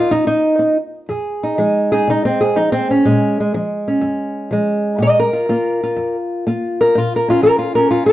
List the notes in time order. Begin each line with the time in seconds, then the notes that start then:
Already playing: D#4 F4
0.10 F2 D#4
0.27 D#4
0.59 C4
1.09 F2 G#4
1.43 D#4
1.58 F3 G#3
1.92 D#4 G#4
2.08 C3 D#4
2.25 C4
2.41 G#4
2.56 F3 D#4
2.72 C4
2.91 C#4
3.05 A#2 G#3
3.40 G#3
3.54 F3 G#3
3.88 C#4
4.01 F2
4.51 F3 G#3
4.99 A#2 A#4 D#5
5.20 A#4
5.33 F4
5.49 A#3 F4
5.83 F4
5.96 F2
6.47 A#3 F4
6.81 A#4
6.95 A#2 F4
7.16 A#4
7.28 C#4 F4
7.43 F3 A#4
7.59 F4
7.75 C#4 A#4
7.91 F2 F4
8.06 A#4